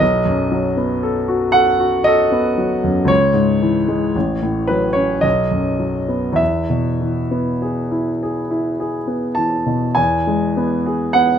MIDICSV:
0, 0, Header, 1, 2, 480
1, 0, Start_track
1, 0, Key_signature, 4, "major"
1, 0, Tempo, 1027397
1, 6, Time_signature, 3, 2, 24, 8
1, 1446, Tempo, 1075269
1, 2406, Tempo, 1156069
1, 2886, Tempo, 1226994
1, 3366, Tempo, 1176471
1, 4899, End_track
2, 0, Start_track
2, 0, Title_t, "Grand piano"
2, 0, Program_c, 0, 0
2, 0, Control_c, 0, 64, 127
2, 0, Note_on_c, 0, 75, 76
2, 3, Note_on_c, 0, 35, 50
2, 13, Control_c, 0, 64, 0
2, 96, Control_c, 0, 64, 127
2, 119, Note_on_c, 0, 42, 43
2, 241, Note_on_c, 0, 54, 41
2, 311, Note_off_c, 0, 42, 0
2, 360, Note_on_c, 0, 59, 43
2, 433, Note_off_c, 0, 54, 0
2, 482, Note_on_c, 0, 69, 44
2, 553, Note_off_c, 0, 59, 0
2, 598, Note_on_c, 0, 66, 42
2, 676, Note_off_c, 0, 69, 0
2, 710, Note_on_c, 0, 78, 79
2, 717, Note_off_c, 0, 75, 0
2, 722, Note_on_c, 0, 69, 41
2, 796, Note_off_c, 0, 66, 0
2, 840, Note_on_c, 0, 66, 40
2, 919, Note_off_c, 0, 69, 0
2, 954, Note_on_c, 0, 75, 80
2, 961, Note_off_c, 0, 78, 0
2, 965, Note_on_c, 0, 69, 47
2, 1038, Note_off_c, 0, 66, 0
2, 1083, Note_on_c, 0, 59, 43
2, 1159, Note_off_c, 0, 69, 0
2, 1205, Note_on_c, 0, 54, 38
2, 1277, Note_off_c, 0, 59, 0
2, 1326, Note_on_c, 0, 42, 41
2, 1396, Note_off_c, 0, 54, 0
2, 1423, Note_on_c, 0, 37, 54
2, 1425, Note_off_c, 0, 35, 0
2, 1438, Note_on_c, 0, 73, 81
2, 1439, Note_off_c, 0, 75, 0
2, 1446, Note_off_c, 0, 42, 0
2, 1454, Control_c, 0, 64, 0
2, 1539, Control_c, 0, 64, 127
2, 1554, Note_on_c, 0, 44, 37
2, 1680, Note_on_c, 0, 52, 41
2, 1745, Note_off_c, 0, 44, 0
2, 1798, Note_on_c, 0, 56, 40
2, 1870, Note_off_c, 0, 52, 0
2, 1892, Note_off_c, 0, 37, 0
2, 1918, Note_off_c, 0, 56, 0
2, 1919, Note_on_c, 0, 33, 44
2, 1924, Control_c, 0, 64, 0
2, 1998, Control_c, 0, 64, 127
2, 2039, Note_on_c, 0, 45, 36
2, 2151, Note_on_c, 0, 71, 61
2, 2158, Note_off_c, 0, 73, 0
2, 2161, Note_on_c, 0, 54, 33
2, 2235, Note_off_c, 0, 45, 0
2, 2265, Note_on_c, 0, 73, 63
2, 2277, Note_on_c, 0, 61, 33
2, 2279, Note_off_c, 0, 71, 0
2, 2357, Note_off_c, 0, 54, 0
2, 2391, Note_on_c, 0, 75, 66
2, 2393, Note_off_c, 0, 33, 0
2, 2397, Note_off_c, 0, 73, 0
2, 2398, Note_on_c, 0, 35, 44
2, 2403, Note_off_c, 0, 61, 0
2, 2414, Control_c, 0, 64, 0
2, 2477, Control_c, 0, 64, 127
2, 2517, Note_on_c, 0, 42, 34
2, 2634, Note_on_c, 0, 54, 33
2, 2710, Note_off_c, 0, 42, 0
2, 2755, Note_on_c, 0, 59, 34
2, 2833, Note_off_c, 0, 54, 0
2, 2855, Note_on_c, 0, 40, 41
2, 2868, Note_off_c, 0, 35, 0
2, 2868, Note_on_c, 0, 76, 61
2, 2879, Note_off_c, 0, 75, 0
2, 2884, Note_off_c, 0, 59, 0
2, 2893, Control_c, 0, 64, 0
2, 2969, Control_c, 0, 64, 127
2, 3002, Note_on_c, 0, 47, 30
2, 3124, Note_on_c, 0, 52, 32
2, 3197, Note_off_c, 0, 47, 0
2, 3243, Note_on_c, 0, 59, 34
2, 3317, Note_off_c, 0, 52, 0
2, 3363, Note_on_c, 0, 68, 34
2, 3438, Note_off_c, 0, 59, 0
2, 3483, Note_on_c, 0, 64, 33
2, 3560, Note_off_c, 0, 68, 0
2, 3611, Note_on_c, 0, 68, 32
2, 3679, Note_off_c, 0, 64, 0
2, 3725, Note_on_c, 0, 64, 31
2, 3799, Note_off_c, 0, 68, 0
2, 3844, Note_on_c, 0, 68, 35
2, 3913, Note_off_c, 0, 64, 0
2, 3956, Note_on_c, 0, 59, 31
2, 4032, Note_off_c, 0, 68, 0
2, 4067, Note_on_c, 0, 81, 54
2, 4072, Note_off_c, 0, 76, 0
2, 4076, Note_on_c, 0, 52, 29
2, 4151, Note_off_c, 0, 59, 0
2, 4196, Note_on_c, 0, 47, 28
2, 4273, Note_off_c, 0, 52, 0
2, 4292, Note_off_c, 0, 40, 0
2, 4312, Note_on_c, 0, 80, 62
2, 4318, Note_off_c, 0, 81, 0
2, 4319, Note_on_c, 0, 40, 46
2, 4321, Note_off_c, 0, 47, 0
2, 4332, Control_c, 0, 64, 0
2, 4398, Control_c, 0, 64, 127
2, 4444, Note_on_c, 0, 56, 38
2, 4566, Note_on_c, 0, 59, 40
2, 4639, Note_off_c, 0, 56, 0
2, 4686, Note_on_c, 0, 68, 37
2, 4759, Note_off_c, 0, 59, 0
2, 4795, Note_on_c, 0, 78, 72
2, 4801, Note_off_c, 0, 80, 0
2, 4804, Note_on_c, 0, 59, 39
2, 4877, Note_off_c, 0, 68, 0
2, 4899, Note_off_c, 0, 40, 0
2, 4899, Note_off_c, 0, 59, 0
2, 4899, Note_off_c, 0, 78, 0
2, 4899, End_track
0, 0, End_of_file